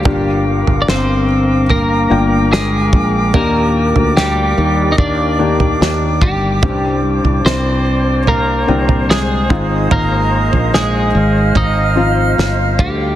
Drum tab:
SD |----o-------o---|----o-------o---|----o-------o---|----o-------o---|
FT |o--o----o-----o-|o--o----o--o--o-|o--o----o--o--o-|o--o----o-----o-|
BD |o-------------o-|--------o-----o-|o-------------o-|--------o-----o-|